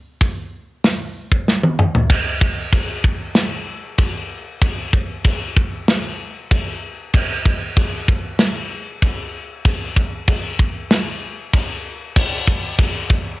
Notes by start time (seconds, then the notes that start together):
0.21 kick, open hi-hat
0.84 snare, open hi-hat
1.32 kick
1.48 snare
1.63 high tom
1.79 mid tom
1.95 floor tom
2.10 kick, crash, china
2.41 kick
2.72 kick, china
3.04 kick
3.35 snare, china
3.98 kick, china
4.62 kick, china
4.93 kick
5.24 kick, china
5.56 kick
5.88 snare, china
6.51 kick, china
7.13 kick, crash, china
7.46 kick
7.77 kick, china
8.08 kick
8.39 snare, china
9.02 kick, china
9.65 kick, china
9.96 kick
10.27 kick, china
10.59 kick
10.91 snare, china
11.53 kick, china
12.16 kick, china, crash
12.47 kick
12.78 kick, china
13.10 kick